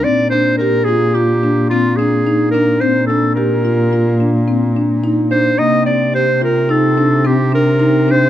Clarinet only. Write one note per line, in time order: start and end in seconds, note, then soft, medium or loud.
0.04 0.30 D5 medium
0.30 0.57 C5 medium
0.57 0.86 A#4 medium
0.84 1.15 G#4 medium
1.14 1.69 G4 medium
1.70 1.98 F4 medium
1.96 2.50 G#4 medium
2.51 2.82 A#4 medium
2.81 3.06 C5 medium
3.07 3.34 A4 medium
3.35 4.43 A#4 medium
5.31 5.60 C5 medium
5.58 5.85 D#5 medium
5.86 6.12 D5 medium
6.15 6.41 C5 medium
6.44 6.72 A#4 medium
6.70 7.28 A4 medium
7.26 7.54 G4 medium
7.54 8.13 A#4 medium
8.11 8.30 C5 medium